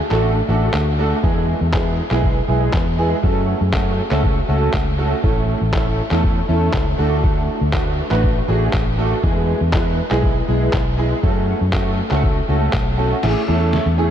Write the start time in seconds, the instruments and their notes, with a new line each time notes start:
0.11 fingered electric bass A1, grand piano A3 D4 F#4 A4, clap
0.48 fingered electric bass A1, grand piano A3 D4 F#4 A4
0.73 fingered electric bass D2, clap
0.98 grand piano A3 D4 F#4 A4
1.23 fingered electric bass E2, grand piano G#3 B3 E4 G#4, kick
1.61 fingered electric bass E2
1.73 grand piano G#3 B3 E4 G#4, kick, clap
2.10 fingered electric bass B1, grand piano G#3 B3 E4 G#4, clap
2.23 kick
2.48 fingered electric bass B1, grand piano G#3 B3 E4 G#4
2.73 fingered electric bass E2, kick, clap
2.98 grand piano G#3 B3 E4 G#4
3.23 fingered electric bass F#2, grand piano A3 C#4 F#4 A4, kick
3.61 fingered electric bass F#2
3.73 grand piano A3 C#4 F#4 A4, kick, clap
4.10 fingered electric bass C#2, grand piano A3 C#4 F#4 A4, clap
4.24 kick
4.48 fingered electric bass C#2, grand piano A3 C#4 F#4 A4
4.73 fingered electric bass C#2, kick, clap
4.98 grand piano A3 C#4 F#4 A4
5.23 fingered electric bass A1, grand piano A3 C#4 E4 A4, kick
5.61 fingered electric bass A1
5.73 grand piano A3 C#4 E4 A4, kick, clap
6.11 fingered electric bass E2, grand piano A3 C#4 E4 A4, clap
6.24 kick
6.48 fingered electric bass E2, grand piano A3 C#4 E4 A4
6.73 fingered electric bass C#2, kick, clap
6.98 fingered electric bass D2, grand piano A3 D4 F#4 A4
7.23 kick
7.61 fingered electric bass D2
7.73 grand piano A3 D4 F#4 B4, kick, clap
8.10 fingered electric bass A1, grand piano A3 D4 F#4 B4, clap
8.23 kick
8.48 fingered electric bass A1, grand piano A3 D4 F#4 G#4
8.73 fingered electric bass A1, kick, clap
8.98 grand piano A3 D4 F#4 A4
9.23 fingered electric bass E2, grand piano G#3 B3 E4 G#4, kick
9.61 fingered electric bass E2
9.73 grand piano G#3 B3 E4 B4, kick, clap
10.10 fingered electric bass B1, grand piano G#3 B3 E4 G#4, clap
10.23 kick
10.48 fingered electric bass B1, grand piano G#3 B3 E4 G#4
10.73 fingered electric bass B1, kick, clap
10.98 grand piano G#3 B3 E4 G#4
11.23 fingered electric bass F#2, grand piano A3 C#4 F#4 A4, kick
11.61 fingered electric bass F#2
11.73 grand piano A3 C#4 F#4 A4, kick, clap
12.10 fingered electric bass C#2, grand piano A3 C#4 F#4 A4, clap
12.23 kick
12.48 fingered electric bass C#2, grand piano A3 C#4 F#4 A4
12.73 fingered electric bass B1, grand piano A5, kick, clap
12.98 grand piano A3 C#4 F#4 A4 F#5
13.22 fingered electric bass A1, grand piano A3 C#4 E4 G#4, snare, crash
13.48 fingered electric bass E2, grand piano A3 C#4 E4 A4
13.73 snare
13.86 fingered electric bass E2
13.98 grand piano A3 C#4 E4 G#4